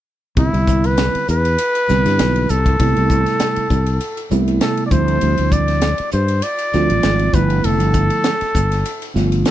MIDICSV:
0, 0, Header, 1, 6, 480
1, 0, Start_track
1, 0, Key_signature, 0, "major"
1, 0, Tempo, 605449
1, 296, Time_signature, 4, 2, 24, 8
1, 7539, End_track
2, 0, Start_track
2, 0, Title_t, "Trumpet"
2, 0, Program_c, 0, 56
2, 302, Note_on_c, 0, 64, 79
2, 678, Note_on_c, 0, 71, 85
2, 690, Note_off_c, 0, 64, 0
2, 1023, Note_off_c, 0, 71, 0
2, 1027, Note_on_c, 0, 71, 100
2, 1980, Note_on_c, 0, 69, 83
2, 1992, Note_off_c, 0, 71, 0
2, 3421, Note_off_c, 0, 69, 0
2, 3659, Note_on_c, 0, 69, 69
2, 3836, Note_off_c, 0, 69, 0
2, 3854, Note_on_c, 0, 74, 54
2, 3896, Note_on_c, 0, 72, 83
2, 3908, Note_off_c, 0, 74, 0
2, 4378, Note_on_c, 0, 74, 81
2, 4390, Note_off_c, 0, 72, 0
2, 4853, Note_off_c, 0, 74, 0
2, 4858, Note_on_c, 0, 72, 73
2, 5099, Note_on_c, 0, 74, 88
2, 5111, Note_off_c, 0, 72, 0
2, 5823, Note_on_c, 0, 71, 76
2, 5835, Note_off_c, 0, 74, 0
2, 6065, Note_on_c, 0, 69, 87
2, 6077, Note_off_c, 0, 71, 0
2, 7289, Note_off_c, 0, 69, 0
2, 7506, Note_on_c, 0, 69, 69
2, 7539, Note_off_c, 0, 69, 0
2, 7539, End_track
3, 0, Start_track
3, 0, Title_t, "Tine electric piano"
3, 0, Program_c, 1, 4
3, 287, Note_on_c, 1, 50, 59
3, 287, Note_on_c, 1, 55, 52
3, 295, Note_on_c, 1, 60, 55
3, 296, Note_on_c, 1, 59, 49
3, 301, Note_on_c, 1, 64, 60
3, 965, Note_off_c, 1, 50, 0
3, 965, Note_off_c, 1, 55, 0
3, 970, Note_off_c, 1, 59, 0
3, 970, Note_off_c, 1, 60, 0
3, 972, Note_off_c, 1, 64, 0
3, 1492, Note_on_c, 1, 50, 62
3, 1496, Note_on_c, 1, 55, 55
3, 1498, Note_on_c, 1, 59, 57
3, 1500, Note_on_c, 1, 60, 55
3, 1505, Note_on_c, 1, 64, 64
3, 1999, Note_off_c, 1, 50, 0
3, 2001, Note_off_c, 1, 55, 0
3, 2002, Note_off_c, 1, 59, 0
3, 2003, Note_off_c, 1, 60, 0
3, 2005, Note_off_c, 1, 64, 0
3, 2212, Note_on_c, 1, 48, 61
3, 2215, Note_on_c, 1, 55, 52
3, 2219, Note_on_c, 1, 57, 51
3, 2223, Note_on_c, 1, 59, 56
3, 2226, Note_on_c, 1, 64, 66
3, 2889, Note_off_c, 1, 48, 0
3, 2891, Note_off_c, 1, 55, 0
3, 2892, Note_off_c, 1, 57, 0
3, 2894, Note_off_c, 1, 59, 0
3, 2896, Note_off_c, 1, 64, 0
3, 3414, Note_on_c, 1, 48, 73
3, 3418, Note_on_c, 1, 57, 66
3, 3419, Note_on_c, 1, 55, 66
3, 3421, Note_on_c, 1, 59, 67
3, 3427, Note_on_c, 1, 64, 81
3, 3883, Note_off_c, 1, 55, 0
3, 3885, Note_off_c, 1, 57, 0
3, 3891, Note_off_c, 1, 64, 0
3, 3892, Note_on_c, 1, 53, 67
3, 3892, Note_on_c, 1, 55, 58
3, 3894, Note_on_c, 1, 57, 57
3, 3897, Note_off_c, 1, 48, 0
3, 3898, Note_on_c, 1, 60, 57
3, 3901, Note_off_c, 1, 59, 0
3, 3901, Note_on_c, 1, 64, 71
3, 4668, Note_off_c, 1, 53, 0
3, 4668, Note_off_c, 1, 55, 0
3, 4669, Note_off_c, 1, 57, 0
3, 4671, Note_off_c, 1, 60, 0
3, 4673, Note_off_c, 1, 64, 0
3, 5338, Note_on_c, 1, 53, 62
3, 5340, Note_on_c, 1, 55, 57
3, 5345, Note_on_c, 1, 57, 56
3, 5346, Note_on_c, 1, 60, 56
3, 5346, Note_on_c, 1, 65, 69
3, 5798, Note_off_c, 1, 53, 0
3, 5803, Note_off_c, 1, 57, 0
3, 5806, Note_on_c, 1, 50, 62
3, 5807, Note_on_c, 1, 53, 57
3, 5812, Note_on_c, 1, 57, 58
3, 5818, Note_on_c, 1, 59, 54
3, 5818, Note_on_c, 1, 64, 66
3, 5819, Note_off_c, 1, 55, 0
3, 5823, Note_off_c, 1, 60, 0
3, 5823, Note_off_c, 1, 65, 0
3, 6584, Note_off_c, 1, 50, 0
3, 6585, Note_off_c, 1, 53, 0
3, 6587, Note_off_c, 1, 57, 0
3, 6590, Note_off_c, 1, 59, 0
3, 6590, Note_off_c, 1, 64, 0
3, 7248, Note_on_c, 1, 50, 73
3, 7252, Note_on_c, 1, 53, 64
3, 7255, Note_on_c, 1, 57, 65
3, 7257, Note_on_c, 1, 59, 67
3, 7259, Note_on_c, 1, 65, 81
3, 7539, Note_off_c, 1, 50, 0
3, 7539, Note_off_c, 1, 53, 0
3, 7539, Note_off_c, 1, 57, 0
3, 7539, Note_off_c, 1, 59, 0
3, 7539, Note_off_c, 1, 65, 0
3, 7539, End_track
4, 0, Start_track
4, 0, Title_t, "Fretless electric bass"
4, 0, Program_c, 2, 35
4, 293, Note_on_c, 2, 36, 76
4, 412, Note_off_c, 2, 36, 0
4, 425, Note_on_c, 2, 36, 62
4, 858, Note_off_c, 2, 36, 0
4, 1020, Note_on_c, 2, 40, 68
4, 1235, Note_off_c, 2, 40, 0
4, 1505, Note_on_c, 2, 36, 76
4, 1619, Note_off_c, 2, 36, 0
4, 1634, Note_on_c, 2, 43, 66
4, 1730, Note_off_c, 2, 43, 0
4, 1744, Note_on_c, 2, 35, 78
4, 1958, Note_off_c, 2, 35, 0
4, 1984, Note_on_c, 2, 36, 78
4, 2198, Note_off_c, 2, 36, 0
4, 2219, Note_on_c, 2, 36, 90
4, 2336, Note_off_c, 2, 36, 0
4, 2359, Note_on_c, 2, 36, 67
4, 2571, Note_off_c, 2, 36, 0
4, 2938, Note_on_c, 2, 36, 70
4, 3155, Note_off_c, 2, 36, 0
4, 3422, Note_on_c, 2, 36, 82
4, 3637, Note_off_c, 2, 36, 0
4, 3896, Note_on_c, 2, 38, 86
4, 4114, Note_off_c, 2, 38, 0
4, 4144, Note_on_c, 2, 38, 79
4, 4260, Note_off_c, 2, 38, 0
4, 4275, Note_on_c, 2, 38, 65
4, 4705, Note_off_c, 2, 38, 0
4, 4864, Note_on_c, 2, 43, 75
4, 5078, Note_off_c, 2, 43, 0
4, 5345, Note_on_c, 2, 38, 69
4, 5460, Note_off_c, 2, 38, 0
4, 5471, Note_on_c, 2, 33, 75
4, 5569, Note_off_c, 2, 33, 0
4, 5584, Note_on_c, 2, 32, 77
4, 5798, Note_off_c, 2, 32, 0
4, 5816, Note_on_c, 2, 31, 84
4, 6033, Note_off_c, 2, 31, 0
4, 6064, Note_on_c, 2, 29, 89
4, 6196, Note_off_c, 2, 29, 0
4, 6196, Note_on_c, 2, 31, 64
4, 6409, Note_off_c, 2, 31, 0
4, 6779, Note_on_c, 2, 31, 66
4, 6994, Note_off_c, 2, 31, 0
4, 7260, Note_on_c, 2, 31, 78
4, 7475, Note_off_c, 2, 31, 0
4, 7539, End_track
5, 0, Start_track
5, 0, Title_t, "Muted fretless electric bass strokes"
5, 913, Note_on_c, 9, 29, 29
5, 992, Note_off_c, 9, 29, 0
5, 2831, Note_on_c, 9, 29, 31
5, 2911, Note_off_c, 9, 29, 0
5, 4755, Note_on_c, 9, 29, 32
5, 4835, Note_off_c, 9, 29, 0
5, 6674, Note_on_c, 9, 29, 31
5, 6753, Note_off_c, 9, 29, 0
5, 7539, End_track
6, 0, Start_track
6, 0, Title_t, "Drums"
6, 291, Note_on_c, 9, 51, 64
6, 293, Note_on_c, 9, 36, 84
6, 371, Note_off_c, 9, 51, 0
6, 372, Note_off_c, 9, 36, 0
6, 428, Note_on_c, 9, 51, 50
6, 508, Note_off_c, 9, 51, 0
6, 534, Note_on_c, 9, 36, 66
6, 535, Note_on_c, 9, 44, 74
6, 614, Note_off_c, 9, 36, 0
6, 615, Note_off_c, 9, 44, 0
6, 666, Note_on_c, 9, 51, 52
6, 745, Note_off_c, 9, 51, 0
6, 773, Note_on_c, 9, 51, 72
6, 776, Note_on_c, 9, 38, 95
6, 852, Note_off_c, 9, 51, 0
6, 856, Note_off_c, 9, 38, 0
6, 910, Note_on_c, 9, 51, 55
6, 989, Note_off_c, 9, 51, 0
6, 1017, Note_on_c, 9, 44, 70
6, 1096, Note_off_c, 9, 44, 0
6, 1149, Note_on_c, 9, 51, 53
6, 1228, Note_off_c, 9, 51, 0
6, 1255, Note_on_c, 9, 51, 74
6, 1335, Note_off_c, 9, 51, 0
6, 1386, Note_on_c, 9, 51, 52
6, 1466, Note_off_c, 9, 51, 0
6, 1497, Note_on_c, 9, 44, 67
6, 1501, Note_on_c, 9, 38, 26
6, 1577, Note_off_c, 9, 44, 0
6, 1581, Note_off_c, 9, 38, 0
6, 1629, Note_on_c, 9, 51, 52
6, 1633, Note_on_c, 9, 38, 23
6, 1708, Note_off_c, 9, 51, 0
6, 1712, Note_off_c, 9, 38, 0
6, 1737, Note_on_c, 9, 51, 70
6, 1741, Note_on_c, 9, 38, 86
6, 1816, Note_off_c, 9, 51, 0
6, 1820, Note_off_c, 9, 38, 0
6, 1869, Note_on_c, 9, 51, 53
6, 1948, Note_off_c, 9, 51, 0
6, 1975, Note_on_c, 9, 44, 71
6, 2054, Note_off_c, 9, 44, 0
6, 2107, Note_on_c, 9, 36, 72
6, 2110, Note_on_c, 9, 51, 51
6, 2186, Note_off_c, 9, 36, 0
6, 2189, Note_off_c, 9, 51, 0
6, 2217, Note_on_c, 9, 36, 84
6, 2218, Note_on_c, 9, 51, 69
6, 2297, Note_off_c, 9, 36, 0
6, 2297, Note_off_c, 9, 51, 0
6, 2351, Note_on_c, 9, 51, 49
6, 2430, Note_off_c, 9, 51, 0
6, 2457, Note_on_c, 9, 36, 69
6, 2460, Note_on_c, 9, 44, 67
6, 2536, Note_off_c, 9, 36, 0
6, 2539, Note_off_c, 9, 44, 0
6, 2586, Note_on_c, 9, 51, 54
6, 2590, Note_on_c, 9, 38, 26
6, 2666, Note_off_c, 9, 51, 0
6, 2670, Note_off_c, 9, 38, 0
6, 2692, Note_on_c, 9, 51, 70
6, 2696, Note_on_c, 9, 38, 96
6, 2772, Note_off_c, 9, 51, 0
6, 2776, Note_off_c, 9, 38, 0
6, 2824, Note_on_c, 9, 51, 54
6, 2904, Note_off_c, 9, 51, 0
6, 2936, Note_on_c, 9, 36, 63
6, 2937, Note_on_c, 9, 44, 73
6, 3015, Note_off_c, 9, 36, 0
6, 3016, Note_off_c, 9, 44, 0
6, 3063, Note_on_c, 9, 51, 48
6, 3143, Note_off_c, 9, 51, 0
6, 3175, Note_on_c, 9, 51, 69
6, 3255, Note_off_c, 9, 51, 0
6, 3307, Note_on_c, 9, 51, 47
6, 3386, Note_off_c, 9, 51, 0
6, 3415, Note_on_c, 9, 44, 68
6, 3494, Note_off_c, 9, 44, 0
6, 3548, Note_on_c, 9, 51, 44
6, 3628, Note_off_c, 9, 51, 0
6, 3653, Note_on_c, 9, 51, 63
6, 3657, Note_on_c, 9, 38, 87
6, 3732, Note_off_c, 9, 51, 0
6, 3736, Note_off_c, 9, 38, 0
6, 3784, Note_on_c, 9, 51, 50
6, 3864, Note_off_c, 9, 51, 0
6, 3893, Note_on_c, 9, 44, 71
6, 3895, Note_on_c, 9, 36, 86
6, 3973, Note_off_c, 9, 44, 0
6, 3974, Note_off_c, 9, 36, 0
6, 4027, Note_on_c, 9, 51, 47
6, 4106, Note_off_c, 9, 51, 0
6, 4132, Note_on_c, 9, 51, 68
6, 4211, Note_off_c, 9, 51, 0
6, 4261, Note_on_c, 9, 51, 53
6, 4341, Note_off_c, 9, 51, 0
6, 4374, Note_on_c, 9, 36, 69
6, 4374, Note_on_c, 9, 44, 78
6, 4453, Note_off_c, 9, 44, 0
6, 4454, Note_off_c, 9, 36, 0
6, 4503, Note_on_c, 9, 51, 54
6, 4507, Note_on_c, 9, 38, 29
6, 4582, Note_off_c, 9, 51, 0
6, 4586, Note_off_c, 9, 38, 0
6, 4610, Note_on_c, 9, 51, 72
6, 4614, Note_on_c, 9, 38, 96
6, 4689, Note_off_c, 9, 51, 0
6, 4693, Note_off_c, 9, 38, 0
6, 4740, Note_on_c, 9, 51, 58
6, 4819, Note_off_c, 9, 51, 0
6, 4848, Note_on_c, 9, 44, 75
6, 4928, Note_off_c, 9, 44, 0
6, 4981, Note_on_c, 9, 51, 53
6, 5060, Note_off_c, 9, 51, 0
6, 5090, Note_on_c, 9, 51, 77
6, 5169, Note_off_c, 9, 51, 0
6, 5220, Note_on_c, 9, 51, 52
6, 5299, Note_off_c, 9, 51, 0
6, 5336, Note_on_c, 9, 44, 69
6, 5340, Note_on_c, 9, 38, 26
6, 5415, Note_off_c, 9, 44, 0
6, 5419, Note_off_c, 9, 38, 0
6, 5468, Note_on_c, 9, 51, 47
6, 5547, Note_off_c, 9, 51, 0
6, 5574, Note_on_c, 9, 51, 74
6, 5578, Note_on_c, 9, 38, 89
6, 5653, Note_off_c, 9, 51, 0
6, 5657, Note_off_c, 9, 38, 0
6, 5703, Note_on_c, 9, 51, 53
6, 5782, Note_off_c, 9, 51, 0
6, 5816, Note_on_c, 9, 36, 88
6, 5816, Note_on_c, 9, 44, 67
6, 5895, Note_off_c, 9, 36, 0
6, 5895, Note_off_c, 9, 44, 0
6, 5945, Note_on_c, 9, 51, 56
6, 6025, Note_off_c, 9, 51, 0
6, 6057, Note_on_c, 9, 51, 74
6, 6136, Note_off_c, 9, 51, 0
6, 6183, Note_on_c, 9, 51, 53
6, 6263, Note_off_c, 9, 51, 0
6, 6292, Note_on_c, 9, 44, 70
6, 6295, Note_on_c, 9, 36, 61
6, 6371, Note_off_c, 9, 44, 0
6, 6375, Note_off_c, 9, 36, 0
6, 6423, Note_on_c, 9, 51, 57
6, 6502, Note_off_c, 9, 51, 0
6, 6531, Note_on_c, 9, 51, 74
6, 6535, Note_on_c, 9, 38, 97
6, 6611, Note_off_c, 9, 51, 0
6, 6615, Note_off_c, 9, 38, 0
6, 6667, Note_on_c, 9, 51, 56
6, 6671, Note_on_c, 9, 38, 28
6, 6746, Note_off_c, 9, 51, 0
6, 6750, Note_off_c, 9, 38, 0
6, 6777, Note_on_c, 9, 36, 57
6, 6780, Note_on_c, 9, 44, 71
6, 6857, Note_off_c, 9, 36, 0
6, 6859, Note_off_c, 9, 44, 0
6, 6910, Note_on_c, 9, 51, 51
6, 6914, Note_on_c, 9, 38, 28
6, 6989, Note_off_c, 9, 51, 0
6, 6993, Note_off_c, 9, 38, 0
6, 7020, Note_on_c, 9, 51, 70
6, 7099, Note_off_c, 9, 51, 0
6, 7150, Note_on_c, 9, 51, 51
6, 7229, Note_off_c, 9, 51, 0
6, 7262, Note_on_c, 9, 44, 67
6, 7266, Note_on_c, 9, 38, 26
6, 7341, Note_off_c, 9, 44, 0
6, 7345, Note_off_c, 9, 38, 0
6, 7388, Note_on_c, 9, 51, 45
6, 7468, Note_off_c, 9, 51, 0
6, 7495, Note_on_c, 9, 51, 65
6, 7499, Note_on_c, 9, 38, 88
6, 7539, Note_off_c, 9, 38, 0
6, 7539, Note_off_c, 9, 51, 0
6, 7539, End_track
0, 0, End_of_file